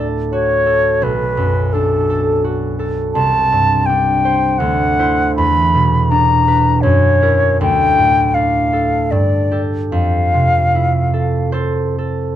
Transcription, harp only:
Already playing: D2 A2 D4
0.00 A4
0.33 F#4
0.66 A4
1.02 B1
1.37 F#2
1.74 D4
2.10 A4
2.44 F#4
2.79 A4
3.15 C2
3.52 G2
3.89 D4
4.25 C5
4.60 D2
4.99 E4 C5
5.38 E2
5.74 B2
6.11 D4
6.48 B4
6.83 F#2
7.22 E4 A#4
7.61 D2
7.98 A2
8.35 D4
8.73 A4
9.12 G2
9.51 G4 A4
9.92 F2
10.34 C3
10.75 E4
11.13 A4
11.53 A4 C5
11.98 A4

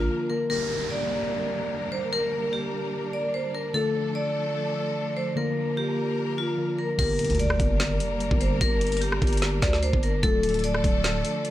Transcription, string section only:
Already playing: F3 A#3 D4 A#4
0.50 G3 A#3 D4 A#4
3.74 F3 A3 A4
5.37 A#3 A#4
6.99 G3 A#3 D4 A#4
10.23 F3 A3 A4

